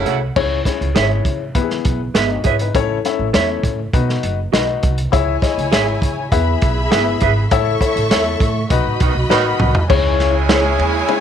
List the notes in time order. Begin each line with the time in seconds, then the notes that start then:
Already playing: C#3 A3 C#4 E4 F#4 A4 C#5
0.06 C2 A4 C#5 F#5, closed hi-hat
0.36 C#2 C#4 E4 G#4 C#5, kick, crash
0.65 C#4 E4 G#4 C#5, kick, snare, closed hi-hat
0.81 C#2, closed hi-hat
0.95 G#1 C#4 E4 G#4 C5 C#5 E5, snare, closed hi-hat
1.03 C#5
1.25 C#3, kick, closed hi-hat
1.55 E3 B3 E4 G4 B4, kick, closed hi-hat
1.62 G#4
1.70 snare
1.85 B1, kick, closed hi-hat
2.14 G1 D#4 G#4 B4 E5, snare, closed hi-hat
2.31 F#4 D#5
2.44 G#1 E4 G#4 B4 C#5 E5, kick, closed hi-hat
2.59 D#4 B4, closed hi-hat
2.75 A1 C#4 E4 A4 C#5, kick, closed hi-hat
3.05 C#4 E4 A4 E5, snare, closed hi-hat
3.19 A1
3.33 E2 C#4 E4 A4 C#5 E5, snare, closed hi-hat
3.63 A2, kick, closed hi-hat
3.93 B2 D#4 F#4 B4 D#5, kick, closed hi-hat
4.09 snare
4.23 F#1, closed hi-hat
4.53 B1 D#4 F#4 B4 D#5, snare, closed hi-hat
4.83 C2, kick, closed hi-hat
4.98 closed hi-hat
5.12 C#2 E4 G#4 C#5 E5 G#5, kick, closed hi-hat
5.42 E4 G#4 C#5 D#5, kick, snare, closed hi-hat
5.58 C#2, closed hi-hat
5.72 G#1 E4 G#4 C#5 E5, snare, closed hi-hat
6.02 C#3, kick, closed hi-hat
6.31 E2 E4 G#4 B4 E5 B5, kick, closed hi-hat
6.62 B1, kick, closed hi-hat
6.91 G1 E4 G#4 B4 E5, snare, closed hi-hat
7.20 G#1 G#4 B4 E5, kick, closed hi-hat
7.50 A1 E4 A4 C#5 E5 C#6, kick, closed hi-hat
7.81 E4 A4 C#5 E5, kick, closed hi-hat
7.96 A1, closed hi-hat
8.10 E2 E4 A4 C#5 E5, snare, closed hi-hat
8.40 A2, kick, closed hi-hat
8.70 B1 D#4 F#4 B4 D#5 B5, kick, closed hi-hat
8.85 A1
9.00 B1 D#3 B3 F#4, kick, closed hi-hat
9.15 B1
9.29 A1 D#3 B3 D#4 F#4 B4 C#5 D#5, snare
9.36 D#5
9.60 C2, mid tom
9.75 floor tom
9.89 C#2 C#3 G#3 C#4 E4 G#4 C#5 G#5, kick, crash
10.20 snare, ride
10.49 G#3 C#4 E4 G#4 C5 C#5, snare, ride
10.56 C#5
10.79 D#2, ride
11.09 G#3 C#4 E4 G#4 C#5, ride